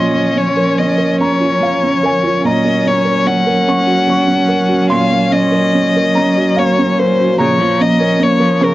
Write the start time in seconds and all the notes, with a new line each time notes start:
Already playing: A#2 F3 C#4 D#5 C6
0.14 F3
0.36 C#4 C#5
0.57 A#4
0.78 C#4 D#5
0.98 A#4
1.20 C#4 C#5 A#5
1.41 F4
1.61 F3 F5
1.83 C#4
2.03 A#4 G#5
2.23 F4
2.44 A#2 F#3 C#4 D#5 A#5
2.65 A#3
2.85 C#4 C#5
3.05 A#4
3.26 C#4 F#5
3.47 A#4
3.68 C#4 C#6
3.87 F#4
4.07 A#3 C#6
4.27 C#4
4.48 A#4
4.69 F#4
4.90 A#2 F5 C6
5.10 A#3
5.31 C#4 D#5
5.52 A#4
5.74 C#4
5.96 A#4
6.15 C#4 A#5
6.37 F#4
6.57 A#3 C#5 F5
6.78 C#4
6.99 A#4 C5
7.20 F#4
7.38 A#2 C#3 F3 C#5 A#5
7.59 F3
7.78 A#3 C#4 D#5
7.98 C#4 A#4
8.19 A#3 C#4 C#5
8.39 F3 A#4
8.61 C#3 C#4 A#4 C#6